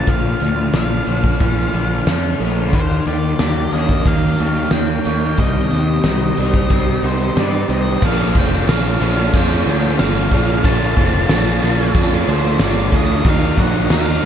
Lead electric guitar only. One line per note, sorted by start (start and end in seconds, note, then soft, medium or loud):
0.09 0.74 F5 medium
0.75 2.04 F5 medium
2.75 3.07 C5 medium
3.07 3.73 D5 medium
3.73 4.07 D#5 medium
4.07 4.72 F5 medium
4.72 5.39 G5 loud
5.39 7.66 D#5 medium
7.07 7.39 C5 medium
7.39 7.72 D5 medium
7.73 8.05 D#5 medium
8.06 8.38 F5 medium
8.38 8.69 G5 medium
8.69 9.35 F5 medium
9.36 9.98 G5 loud
9.99 10.66 F5 medium
10.65 11.91 A5 loud
12.29 12.59 C5 medium
12.64 12.96 D5 loud
12.96 13.28 D#5 loud
13.29 13.61 F5 loud
13.61 13.93 F#5 loud
13.94 14.25 F5 loud